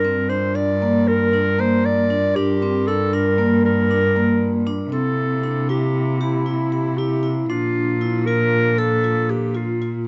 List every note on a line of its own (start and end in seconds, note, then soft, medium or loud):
0.00 2.36 G2 medium
0.00 4.88 G3 medium
0.00 4.89 F4 medium
0.00 0.31 A#4 medium
0.00 4.89 A#4 medium
0.04 0.26 C4 medium
0.29 0.51 D4 medium
0.29 0.57 C5 medium
0.55 0.77 D4 medium
0.55 1.09 D5 medium
0.82 1.24 A#3 medium
1.07 1.62 A#4 medium
1.33 1.54 D4 medium
1.59 2.01 A#3 medium
1.59 1.87 C5 medium
1.85 2.37 D5 loud
2.10 2.31 D4 medium
2.35 4.89 G2 medium
2.35 2.57 D4 medium
2.35 2.89 G4 medium
2.62 2.83 C4 medium
2.87 3.09 D4 medium
2.87 3.16 A4 medium
3.13 3.34 D4 medium
3.13 3.65 A#4 medium
3.38 3.81 A#3 medium
3.65 4.63 A#4 medium
3.91 4.12 D4 medium
4.16 4.58 A#3 medium
4.67 4.88 D4 medium
4.92 7.47 C3 medium
4.92 7.51 C3 medium
4.92 7.46 A#3 medium
4.92 5.35 C4 medium
4.92 7.47 E4 medium
4.92 5.65 A4 medium
5.44 5.65 D4 medium
5.69 6.12 E4 medium
5.69 6.22 G4 medium
6.21 6.99 E4 medium
6.21 6.42 G4 medium
6.46 6.67 E4 medium
6.72 6.94 G4 medium
6.98 7.19 E4 medium
6.98 7.36 G4 medium
7.23 7.44 E4 medium
7.49 10.08 A#2 medium
7.49 9.89 F3 medium
7.49 9.89 A#3 medium
7.49 9.89 D4 medium
7.49 7.92 D4 medium
7.49 8.28 F4 medium
8.01 8.22 E4 medium
8.26 8.70 F4 medium
8.26 8.80 A#4 medium
8.78 9.32 A4 medium
8.78 8.99 A4 medium
9.04 9.25 F4 medium
9.30 9.58 G4 medium
9.30 9.51 A4 medium
9.55 9.76 F4 medium
9.55 9.94 F4 medium
9.82 10.02 F4 medium